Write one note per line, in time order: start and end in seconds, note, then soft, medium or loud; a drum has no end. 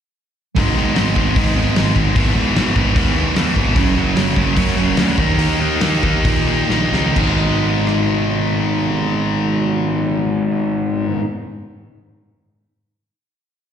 0.55 0.74 G#1 medium
0.55 0.76 G#2 medium
0.55 0.76 D#3 medium
0.55 0.77 G#3 medium
0.55 0.77 B3 medium
0.55 0.77 D#4 loud
0.55 kick loud
0.55 open hi-hat medium
0.74 0.93 G#1 medium
0.74 0.95 G#2 medium
0.74 0.94 D#3 medium
0.74 0.95 G#3 medium
0.74 0.96 B3 medium
0.74 0.95 D#4 medium
0.95 1.13 G#1 medium
0.95 1.14 G#2 medium
0.95 1.14 D#3 medium
0.95 1.15 G#3 medium
0.95 1.15 B3 medium
0.95 1.15 D#4 medium
0.95 snare medium
0.95 open hi-hat medium
1.14 1.34 G#1 medium
1.14 1.34 G#2 medium
1.14 1.35 D#3 medium
1.14 1.35 G#3 medium
1.14 1.35 B3 medium
1.14 1.35 D#4 medium
1.14 kick medium
1.35 1.55 G#2 medium
1.35 1.54 G#2 medium
1.35 1.56 D#3 loud
1.35 1.56 G#3 medium
1.35 1.56 B3 loud
1.35 1.56 D#4 loud
1.35 kick loud
1.35 open hi-hat medium
1.54 1.72 G#1 medium
1.54 1.74 G#2 medium
1.54 1.74 D#3 medium
1.54 1.75 G#3 medium
1.54 1.75 B3 medium
1.54 1.75 D#4 medium
1.75 2.11 G#1 medium
1.75 1.94 G#2 medium
1.75 1.94 D#3 medium
1.75 1.94 G#3 medium
1.75 1.95 B3 medium
1.75 1.95 D#4 medium
1.75 snare loud
1.75 open hi-hat medium
1.95 2.13 G#2 medium
1.95 2.14 D#3 medium
1.95 2.14 G#3 medium
1.95 2.14 B3 medium
1.95 2.15 D#4 loud
1.95 kick medium
2.14 2.33 G#1 loud
2.14 2.36 E2 medium
2.14 2.34 G#2 medium
2.14 2.35 B2 medium
2.14 2.35 E3 medium
2.14 2.35 G#3 loud
2.14 2.35 B3 loud
2.14 2.35 E4 loud
2.14 kick loud
2.14 open hi-hat medium
2.34 2.52 G#1 medium
2.34 2.54 E2 medium
2.34 2.54 G#2 medium
2.34 2.55 B2 medium
2.34 2.55 E3 medium
2.34 2.55 G#3 medium
2.34 2.55 B3 medium
2.34 2.56 E4 loud
2.55 2.73 G#1 medium
2.55 2.74 E2 medium
2.55 2.74 G#2 medium
2.55 2.75 B2 medium
2.55 2.75 E3 medium
2.55 2.75 G#3 medium
2.55 2.76 B3 medium
2.55 2.76 E4 medium
2.55 snare loud
2.55 open hi-hat soft
2.75 2.93 G#1 medium
2.75 2.96 E2 medium
2.75 2.94 G#2 medium
2.75 2.96 B2 medium
2.75 2.95 E3 medium
2.75 2.95 G#3 medium
2.75 2.96 B3 medium
2.75 2.96 E4 medium
2.75 kick medium
2.95 3.30 D#2 medium
2.95 3.17 E2 loud
2.95 3.15 G#2 loud
2.95 3.17 B2 loud
2.95 3.15 E3 loud
2.95 3.15 G#3 loud
2.95 3.16 B3 loud
2.95 3.16 E4 loud
2.95 kick loud
2.95 open hi-hat medium
3.16 3.35 E2 medium
3.16 3.34 G#2 medium
3.16 3.36 B2 medium
3.16 3.35 E3 medium
3.16 3.35 G#3 medium
3.16 3.35 B3 medium
3.16 3.36 E4 medium
3.35 3.53 D#2 medium
3.35 3.54 E2 medium
3.35 3.54 G#2 medium
3.35 3.55 B2 loud
3.35 3.55 E3 medium
3.35 3.55 G#3 medium
3.35 3.56 B3 medium
3.35 3.56 E4 medium
3.35 snare loud
3.35 open hi-hat medium
3.55 3.76 G#1 medium
3.55 3.74 E2 medium
3.55 3.74 G#2 medium
3.55 3.75 B2 loud
3.55 3.74 E3 medium
3.55 3.75 G#3 medium
3.55 3.75 B3 loud
3.55 3.75 E4 medium
3.55 kick medium
3.75 3.93 F#1 medium
3.75 3.94 F#2 medium
3.75 3.96 C#3 medium
3.75 3.94 F#3 medium
3.75 3.95 A#3 loud
3.75 3.95 C#4 loud
3.75 3.95 F#4 loud
3.75 kick loud
3.75 open hi-hat medium
3.95 4.14 F#1 medium
3.95 4.15 F#2 medium
3.95 4.16 C#3 medium
3.95 4.13 F#3 medium
3.95 4.15 A#3 medium
3.95 4.15 C#4 medium
3.95 4.15 F#4 medium
4.15 4.34 F#1 medium
4.15 4.36 F#2 medium
4.15 4.37 C#3 medium
4.15 4.33 F#3 medium
4.15 4.34 A#3 medium
4.15 4.34 C#4 medium
4.15 4.34 F#4 medium
4.15 snare medium
4.15 open hi-hat medium
4.34 4.54 F#1 medium
4.34 4.56 F#2 medium
4.34 4.56 C#3 medium
4.34 4.53 F#3 medium
4.34 4.54 A#3 medium
4.34 4.54 C#4 medium
4.34 4.54 F#4 medium
4.34 kick medium
4.54 4.78 F#2 medium
4.54 4.74 F#2 medium
4.54 4.79 C#3 loud
4.54 4.74 F#3 loud
4.54 4.75 A#3 loud
4.54 4.75 C#4 loud
4.54 4.75 F#4 loud
4.54 kick loud
4.54 open hi-hat medium
4.59 4.79 F#3 loud
4.76 4.95 F#1 medium
4.76 4.95 F#3 medium
4.76 4.95 A#3 medium
4.76 4.96 C#4 medium
4.76 4.96 F#4 loud
4.80 4.98 F#2 medium
4.80 4.99 C#3 medium
4.80 4.99 F#3 medium
4.96 5.15 D2 medium
4.96 5.17 F#2 medium
4.96 5.17 C#3 loud
4.96 5.16 F#3 medium
4.96 5.16 A#3 medium
4.96 5.16 C#4 medium
4.96 5.16 F#4 medium
4.96 snare loud
4.96 open hi-hat medium
5.00 5.18 F#3 loud
5.17 5.36 D#2 medium
5.17 5.37 D#3 loud
5.17 5.38 A#3 loud
5.17 5.38 D#4 loud
5.17 5.39 G4 loud
5.17 kick loud
5.39 5.57 D#2 medium
5.39 5.59 D#3 medium
5.39 5.59 A#3 medium
5.39 5.60 D#4 loud
5.39 5.60 G4 medium
5.39 open hi-hat medium
5.60 5.78 D#2 medium
5.60 5.80 D#3 medium
5.60 5.81 A#3 medium
5.60 5.81 D#4 loud
5.60 5.82 G4 medium
5.81 6.00 D#2 medium
5.81 6.01 D#3 medium
5.81 6.01 A#3 medium
5.81 6.02 D#4 medium
5.81 6.02 G4 medium
5.81 snare loud
5.81 open hi-hat medium
6.02 6.22 D#2 medium
6.02 6.24 D#3 medium
6.02 6.25 A#3 medium
6.02 6.25 D#4 medium
6.02 6.25 G4 medium
6.02 kick medium
6.25 6.64 A#2 loud
6.25 6.45 D#3 medium
6.25 6.46 A#3 loud
6.25 6.47 D#4 loud
6.25 6.47 G4 loud
6.25 kick loud
6.25 open hi-hat medium
6.46 6.67 D#3 medium
6.46 6.68 A#3 medium
6.46 6.69 D#4 medium
6.46 6.69 G4 medium
6.68 6.90 A#1 medium
6.68 6.91 D#3 medium
6.68 6.92 A#3 medium
6.68 6.92 D#4 medium
6.68 6.93 G4 medium
6.68 snare medium
6.92 7.13 C#2 medium
6.92 7.14 D#3 medium
6.92 7.15 A#3 medium
6.92 7.15 D#4 loud
6.92 7.15 G4 medium
6.92 snare medium
7.15 11.18 G#1 medium
7.15 11.20 G#2 medium
7.15 11.22 D#3 medium
7.15 11.23 G#3 medium
7.15 11.23 B3 medium
7.15 11.24 D#4 loud
7.15 kick loud
7.15 crash medium
7.87 cross-stick medium